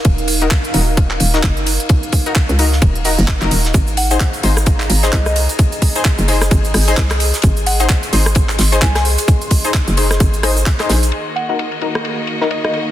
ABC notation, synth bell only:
X:1
M:4/4
L:1/16
Q:"Swing 16ths" 1/4=130
K:Ebdor
V:1 name="Synth bell"
z16 | z16 | z2 g g z8 e e z2 | z16 |
z2 g g z8 a a z2 | z16 | z2 g g z8 e e z2 |]